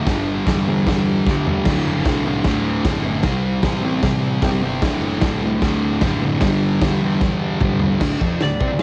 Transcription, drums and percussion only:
0.06 kick, snare, open hi-hat
0.47 kick, snare, open hi-hat
0.87 kick, snare, open hi-hat
1.27 kick, snare
1.47 floor tom
1.65 kick, snare, crash
2.05 kick, snare, open hi-hat
2.44 kick, snare, open hi-hat
2.85 kick, snare, open hi-hat
3.23 kick, snare, open hi-hat
3.63 kick, snare, open hi-hat
4.03 kick, snare, open hi-hat
4.42 kick, snare, open hi-hat
4.82 kick, snare, open hi-hat
5.21 kick, snare, open hi-hat
5.62 kick, snare, open hi-hat
6.01 kick, snare, open hi-hat
6.40 kick, snare, open hi-hat
6.81 kick, snare, open hi-hat
7.21 kick, snare
7.61 kick, mid tom
7.80 floor tom
8.01 kick, snare, crash
8.21 kick
8.40 snare, crash
8.60 kick
8.79 snare, crash

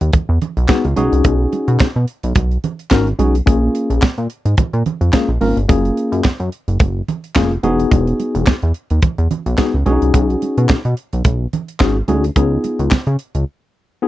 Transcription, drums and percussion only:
0.01 closed hi-hat
0.13 kick, closed hi-hat, muted conga, low conga
0.42 closed hi-hat, low conga
0.57 closed hi-hat
0.68 kick, snare, clap, high conga
0.84 closed hi-hat
0.97 closed hi-hat, high conga
1.13 closed hi-hat
1.24 kick, closed hi-hat, muted conga
1.53 closed hi-hat, muted conga
1.68 closed hi-hat
1.79 kick, snare, clap, high conga
2.08 closed hi-hat
2.23 closed hi-hat
2.35 kick, closed hi-hat, muted conga
2.51 closed hi-hat
2.64 closed hi-hat, low conga
2.79 closed hi-hat
2.90 kick, snare, clap, high conga
3.07 closed hi-hat
3.19 closed hi-hat, high conga
3.35 closed hi-hat
3.47 kick, closed hi-hat, muted conga
3.75 closed hi-hat
3.90 closed hi-hat
4.02 kick, snare, clap, high conga
4.18 closed hi-hat
4.30 closed hi-hat
4.46 closed hi-hat
4.57 kick, closed hi-hat, muted conga, low conga
4.73 closed hi-hat
4.86 closed hi-hat, low conga
5.01 closed hi-hat
5.13 kick, snare, clap, high conga
5.41 open hi-hat, high conga
5.57 closed hi-hat
5.69 kick, closed hi-hat, muted conga
5.85 closed hi-hat
5.97 closed hi-hat
6.13 closed hi-hat
6.24 kick, snare, clap, high conga
6.40 closed hi-hat
6.52 closed hi-hat
6.68 closed hi-hat
6.79 kick, closed hi-hat, muted conga
7.08 closed hi-hat, low conga
7.24 closed hi-hat
7.35 kick, snare, clap, high conga
7.51 closed hi-hat
7.63 closed hi-hat, high conga
7.80 closed hi-hat
7.91 kick, closed hi-hat, muted conga
8.07 closed hi-hat
8.20 closed hi-hat, muted conga
8.35 closed hi-hat
8.46 kick, snare, clap, high conga
8.62 closed hi-hat
8.74 closed hi-hat
8.90 closed hi-hat
9.02 kick, closed hi-hat, muted conga, low conga
9.18 closed hi-hat
9.31 closed hi-hat, low conga
9.46 closed hi-hat
9.58 kick, snare, clap, high conga
9.86 closed hi-hat, high conga
10.02 closed hi-hat
10.14 kick, closed hi-hat, muted conga
10.30 closed hi-hat
10.42 closed hi-hat, muted conga
10.58 closed hi-hat
10.69 kick, snare, clap, high conga
10.85 closed hi-hat
10.97 closed hi-hat
11.13 closed hi-hat
11.25 kick, closed hi-hat, muted conga
11.53 closed hi-hat, low conga
11.68 closed hi-hat
11.80 kick, snare, clap, high conga
12.08 closed hi-hat, high conga
12.24 closed hi-hat
12.36 kick, closed hi-hat, muted conga
12.64 closed hi-hat, muted conga
12.79 closed hi-hat
12.91 kick, snare, clap, high conga
13.07 closed hi-hat
13.19 closed hi-hat
13.35 closed hi-hat

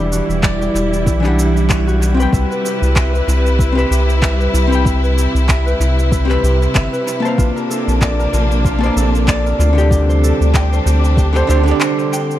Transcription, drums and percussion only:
0.12 shaker
0.30 shaker
0.43 kick, clap, shaker
0.62 shaker
0.76 shaker
0.94 shaker
1.06 kick, shaker
1.24 clap, shaker
1.39 shaker
1.57 shaker
1.69 kick, clap, shaker
1.88 shaker
2.02 shaker
2.20 shaker
2.33 kick, shaker
2.52 shaker
2.66 shaker
2.83 shaker
2.96 kick, clap, shaker
3.15 shaker
3.29 shaker
3.46 shaker
3.59 kick, shaker
3.78 shaker
3.92 shaker
4.10 shaker
4.22 kick, clap, shaker
4.41 shaker
4.55 shaker
4.73 shaker
4.85 kick, shaker
5.04 shaker
5.18 shaker
5.36 shaker
5.49 kick, clap, shaker
5.67 shaker
5.81 shaker
5.99 shaker
6.12 kick, shaker
6.30 clap, shaker
6.44 shaker
6.62 shaker
6.75 kick, clap, shaker
6.94 shaker
7.08 shaker
7.25 shaker
7.38 kick, shaker
7.57 shaker
7.71 shaker
7.89 shaker
8.01 kick, clap, shaker
8.20 shaker
8.34 shaker
8.51 shaker
8.64 kick, shaker
8.83 shaker
8.97 shaker
9.15 shaker
9.28 kick, clap, shaker
9.46 shaker
9.60 shaker
9.78 shaker
9.91 kick, shaker
10.10 shaker
10.24 shaker
10.42 shaker
10.54 kick, clap, shaker
10.73 shaker
10.87 shaker
11.04 shaker
11.17 kick, shaker
11.35 clap, shaker
11.50 shaker
11.67 shaker
11.81 clap, shaker
11.99 shaker
12.13 shaker
12.31 shaker

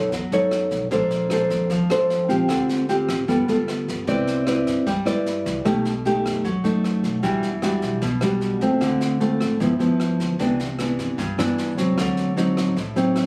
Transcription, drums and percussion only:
0.12 kick, snare
0.32 snare
0.51 cross-stick, snare
0.71 kick, snare
0.91 kick, snare
1.11 snare
1.30 cross-stick, snare
1.50 kick, snare
1.70 kick, snare
1.90 cross-stick, snare
2.10 snare
2.29 kick, snare
2.49 kick, cross-stick, snare
2.69 snare
2.89 snare
3.08 kick, cross-stick, snare
3.28 kick, snare
3.48 snare
3.68 cross-stick, snare
3.88 kick, snare
4.07 kick, snare
4.27 snare
4.47 cross-stick, snare
4.67 kick, snare
4.87 kick, snare
5.06 cross-stick, snare
5.26 snare
5.46 kick, snare
5.66 kick, cross-stick, snare
5.85 snare
6.05 snare
6.25 kick, cross-stick, snare
6.45 kick, snare
6.65 snare
6.84 cross-stick, snare
7.04 kick, snare
7.23 kick, snare
7.43 snare
7.62 cross-stick, snare
7.82 kick, snare
8.02 kick, snare
8.21 cross-stick, snare
8.41 snare
8.61 kick, snare
8.81 kick, cross-stick, snare
9.01 snare
9.21 snare
9.41 kick, cross-stick, snare
9.60 kick, snare
9.80 snare
10.00 cross-stick, snare
10.20 kick, snare
10.39 kick, snare
10.60 snare
10.79 cross-stick, snare
10.99 kick, snare
11.19 kick, snare
11.39 cross-stick, snare
11.58 snare
11.78 kick, snare
11.98 kick, cross-stick, snare
12.17 snare
12.37 snare
12.57 kick, cross-stick, snare
12.77 kick, snare
12.96 snare
13.16 cross-stick, snare

